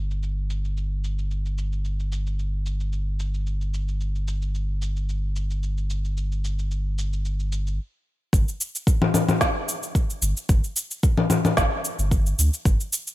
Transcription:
0.00 7.79 G1 medium
0.11 shaker soft
0.23 shaker soft
0.50 shaker medium
0.65 shaker soft
0.77 shaker soft
1.04 shaker medium
1.19 shaker soft
1.31 shaker soft
1.46 shaker soft
1.58 shaker medium
1.73 shaker soft
1.85 shaker soft
2.00 shaker soft
2.12 shaker medium
2.27 shaker soft
2.39 shaker soft
2.66 shaker medium
2.80 shaker soft
2.93 shaker soft
3.20 shaker medium
3.34 shaker soft
3.47 shaker soft
3.61 shaker soft
3.74 shaker medium
3.88 shaker soft
4.01 shaker soft
4.15 shaker soft
4.28 shaker medium
4.42 shaker soft
4.55 shaker soft
4.82 shaker medium
4.96 shaker soft
5.09 shaker soft
5.36 shaker medium
5.51 shaker soft
5.63 shaker soft
5.78 shaker soft
5.90 shaker medium
6.05 shaker soft
6.17 shaker soft
6.32 shaker soft
6.44 shaker medium
6.59 shaker soft
6.71 shaker soft
6.98 shaker medium
7.13 shaker soft
7.25 shaker soft
7.40 shaker soft
7.52 shaker medium
7.67 shaker soft
8.33 8.44 G1 loud
8.33 kick loud
8.33 shaker soft
8.48 shaker soft
8.61 shaker medium
8.75 shaker soft
8.87 kick loud
8.87 shaker soft
9.02 low conga medium
9.14 low conga medium
9.14 shaker medium
9.29 low conga medium
9.29 shaker soft
9.41 kick loud
9.41 snare medium
9.41 shaker soft
9.69 shaker medium
9.83 shaker soft
9.95 kick loud
9.95 shaker soft
10.10 shaker soft
10.22 10.33 G1 medium
10.22 shaker medium
10.37 shaker soft
10.49 10.60 G1 loud
10.49 kick loud
10.49 shaker soft
10.64 shaker soft
10.76 shaker medium
10.91 shaker soft
11.03 kick loud
11.03 shaker soft
11.18 low conga medium
11.30 low conga medium
11.30 shaker medium
11.45 low conga medium
11.45 shaker soft
11.57 11.69 G1 medium
11.57 kick loud
11.57 snare medium
11.57 shaker soft
11.85 shaker medium
11.99 12.34 G1 loud
11.99 shaker soft
12.11 kick loud
12.11 shaker soft
12.26 shaker soft
12.39 12.50 D2 medium
12.39 shaker medium
12.54 shaker soft
12.65 12.77 G1 loud
12.65 kick loud
12.65 shaker soft
12.80 shaker soft
12.93 shaker medium
13.07 shaker soft

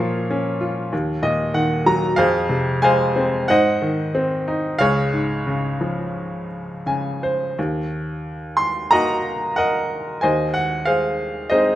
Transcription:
0.00 0.89 A#2 medium
0.00 0.89 F3 soft
0.00 1.82 A#4 soft
0.00 1.82 C#5 medium
0.00 1.81 F5 medium
0.31 0.91 C#4 medium
0.61 0.91 F4 soft
0.92 2.14 D#2 medium
1.23 2.14 A#2 soft
1.23 1.52 D#5 medium
1.54 2.15 D#3 soft
1.54 1.83 F#5 medium
1.86 2.17 F#3 medium
1.86 2.15 A#5 medium
2.16 3.44 F2 medium
2.16 3.45 G#4 medium
2.16 2.83 C5 medium
2.16 2.83 F5 medium
2.49 3.45 C3 medium
2.82 3.46 G#3 medium
2.82 3.45 C5 medium
2.82 3.45 F5 medium
2.82 3.50 G#5 medium
3.16 3.47 C4 medium
3.48 4.76 G#2 medium
3.48 4.77 C5 medium
3.48 4.77 D#5 medium
3.48 4.43 F#5 medium
3.82 4.77 D#3 soft
4.15 4.78 C4 medium
4.48 4.79 D#4 medium
4.79 7.53 C#2 medium
4.79 6.82 G#4 medium
4.79 6.82 C#5 medium
4.79 6.81 F5 medium
5.13 6.45 G#2 soft
5.47 6.82 C#3 medium
5.81 7.19 F3 soft
6.86 7.56 C#3 soft
6.86 7.20 G#5 medium
7.23 7.55 C5 medium
7.59 10.20 D#2 medium
8.57 8.91 C6 medium
8.91 10.19 A#3 soft
8.91 10.19 D#4 soft
8.91 10.20 F#4 soft
8.91 9.56 D#5 medium
8.91 9.55 F#5 medium
8.91 9.59 A#5 medium
9.56 10.19 A#4 medium
9.56 10.19 D#5 medium
9.56 10.25 F#5 medium
10.21 11.75 D#2 medium
10.21 10.85 C5 medium
10.21 11.47 D#5 medium
10.21 10.55 G#5 medium
10.54 10.88 F#5 medium
10.85 11.50 G#4 medium
10.85 11.50 C5 soft
10.85 11.52 F5 medium
11.50 11.75 G#3 soft
11.50 11.75 C4 soft
11.50 11.75 D#4 soft
11.50 11.75 G#4 soft
11.50 11.75 C5 medium
11.50 11.75 D#5 medium

